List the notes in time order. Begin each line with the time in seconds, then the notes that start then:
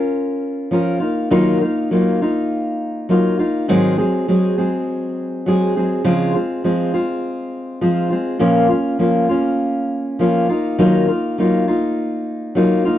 Already playing: C#4 F4 A#4
0.71 F3 C#4 F4 A#4
1.00 A#3 D#4 F4
1.31 D#3 F#3 A#3 D#4 F4
1.61 A#3 D#4 F4
1.91 F#3 A#3 D#4 F4
2.21 A#3 D#4 F4
3.09 F#3 A#3 D#4 F4
3.39 A#3 D#4 F4
3.68 G#2 D#3 F#3 G#3 C4 G#4
3.98 F#3 G#3 C4 G#4
4.28 F#3 G#3 C4 G#4
4.58 F#3 G#3 C4 G#4
5.46 F#3 G#3 C4 G#4
5.76 F#3 G#3 C4 G#4
6.04 C#3 F3 G#3 C4 F4
6.34 G#3 C4 F4
6.64 F3 G#3 C4 F4
6.94 G#3 C4 F4
7.81 F3 G#3 C4 F4
8.10 G#3 C4 F4
8.39 A#2 F3 A#3 C#4 F4
8.69 A#3 C#4 F4
8.99 F3 A#3 C#4 F4
9.29 A#3 C#4 F4
10.19 F3 A#3 C#4 F4
10.49 A#3 D#4 F4
10.78 D#3 F#3 A#3 D#4 F4
11.08 A#3 D#4 F4
11.38 F#3 A#3 D#4 F4
11.68 A#3 D#4 F4
12.55 F#3 A#3 D#4 F4
12.85 A#3 D#4 F4